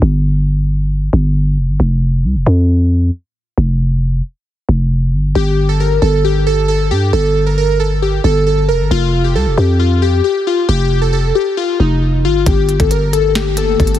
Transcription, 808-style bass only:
0.02 1.09 G1 loud
1.13 1.59 G1 loud
1.58 1.70 F1 loud
1.69 1.79 G1 loud
1.80 2.26 F1 loud
2.24 2.37 C2 loud
2.35 2.46 F1 loud
2.46 3.10 F2 loud
3.58 4.22 F1 loud
4.69 5.15 F1 loud
5.13 5.34 G1 loud
5.35 5.99 G1 loud
6.02 6.92 G1 loud
6.91 7.12 G2 loud
7.13 8.20 G1 loud
8.24 8.70 G1 loud
8.69 8.81 F1 loud
8.80 8.90 G1 loud
8.91 9.37 F1 loud
9.35 9.48 C2 loud
9.46 9.57 F1 loud
9.58 10.22 F2 loud
10.69 11.33 F1 loud
11.80 12.26 F1 loud
12.24 12.45 G1 loud
12.46 12.78 G1 loud
12.80 13.76 G1 loud
13.80 13.99 G1 loud

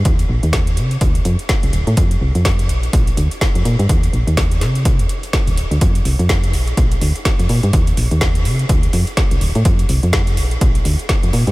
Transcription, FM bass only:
0.05 0.25 D#2 medium
0.29 0.40 A#1 medium
0.43 0.79 D#2 medium
0.77 0.97 C3 medium
1.01 1.21 D2 medium
1.25 1.36 F2 loud
1.63 1.71 C2 medium
1.73 1.84 D1 medium
1.87 1.95 A2 loud
1.97 2.17 F2 loud
2.21 2.32 C2 medium
2.35 2.71 F2 medium
2.69 2.89 A#1 medium
2.93 3.13 A#1 medium
3.17 3.28 D2 medium
3.55 3.63 F2 medium
3.65 3.76 A#2 medium
3.79 3.87 G2 loud
3.89 4.09 D#2 loud
4.13 4.24 A#1 medium
4.27 4.63 D#2 medium
4.61 5.01 C3 medium
4.99 5.07 D2 medium
5.47 5.65 D1 loud
5.71 5.79 D2 loud
5.81 6.01 F2 loud
6.05 6.16 C2 medium
6.19 6.55 F2 loud
6.53 6.73 A#1 medium
6.77 6.97 A#1 medium
7.01 7.12 D2 medium
7.39 7.47 F2 medium
7.49 7.60 A#2 medium
7.63 7.71 G2 loud
7.73 7.93 D#2 loud
7.97 8.08 A#1 medium
8.11 8.47 D#2 medium
8.45 8.65 C3 medium
8.69 8.89 D2 medium
8.93 9.04 F2 medium
9.31 9.39 C2 medium
9.41 9.52 D1 medium
9.55 9.63 A2 loud
9.65 9.85 F2 loud
9.89 10.00 C2 medium
10.03 10.39 F2 medium
10.37 10.57 A#1 medium
10.61 10.81 A#1 medium
10.85 10.96 D2 medium
11.23 11.31 F2 medium
11.33 11.44 A#2 medium
11.47 11.52 G2 loud

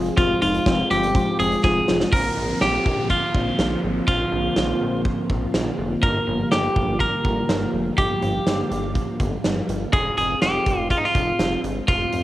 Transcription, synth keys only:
0.17 0.32 F3 loud
0.17 0.32 G#3 medium
0.17 0.32 C4 medium
0.17 0.32 F4 loud
0.42 0.56 F3 medium
0.42 0.56 G#3 medium
0.42 0.56 C4 medium
0.42 0.56 D#4 medium
0.66 0.81 F3 medium
0.66 0.81 G#3 medium
0.66 0.81 C4 medium
0.66 0.81 F4 medium
0.91 1.05 F3 medium
0.91 1.05 G#3 medium
0.91 1.05 C4 medium
0.91 1.05 F4 medium
1.15 1.29 F3 medium
1.15 1.30 G#3 medium
1.15 1.29 C4 medium
1.15 1.29 F4 loud
1.39 1.54 F3 medium
1.39 1.54 G#3 medium
1.39 1.54 C4 medium
1.39 1.54 F4 medium
1.64 1.78 F3 medium
1.64 1.78 G#3 medium
1.64 1.78 C4 medium
1.64 1.78 F4 medium
1.88 2.03 F3 medium
1.88 2.03 G#3 medium
1.88 2.03 C4 medium
1.88 2.03 F4 medium

